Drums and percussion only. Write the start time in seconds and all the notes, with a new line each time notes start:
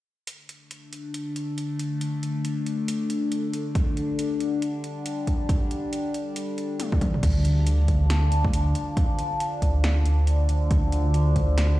0.27 closed hi-hat
0.49 closed hi-hat
0.71 closed hi-hat
0.93 closed hi-hat
1.14 closed hi-hat
1.36 closed hi-hat
1.58 closed hi-hat
1.79 closed hi-hat
2.01 closed hi-hat
2.23 closed hi-hat
2.45 closed hi-hat
2.66 closed hi-hat
2.88 closed hi-hat
3.10 closed hi-hat
3.32 closed hi-hat
3.54 closed hi-hat
3.75 kick, closed hi-hat
3.97 closed hi-hat
4.19 closed hi-hat
4.40 closed hi-hat
4.62 closed hi-hat
4.84 closed hi-hat
5.06 closed hi-hat
5.27 kick, closed hi-hat
5.49 kick, closed hi-hat
5.71 closed hi-hat
5.93 closed hi-hat
6.14 closed hi-hat
6.36 closed hi-hat
6.58 closed hi-hat
6.80 closed hi-hat, high tom
6.92 kick, high tom
7.01 kick, closed hi-hat, mid tom
7.14 mid tom
7.23 kick, closed hi-hat, crash
7.45 closed hi-hat
7.67 closed hi-hat
7.88 kick, closed hi-hat
8.10 snare, closed hi-hat
8.32 closed hi-hat
8.45 kick
8.53 closed hi-hat
8.75 closed hi-hat
8.97 kick, closed hi-hat
9.19 closed hi-hat
9.40 closed hi-hat
9.62 kick, closed hi-hat
9.84 snare, closed hi-hat
10.06 closed hi-hat
10.27 closed hi-hat
10.49 closed hi-hat
10.71 kick, closed hi-hat
10.92 closed hi-hat
11.14 closed hi-hat
11.36 kick, closed hi-hat
11.58 snare, closed hi-hat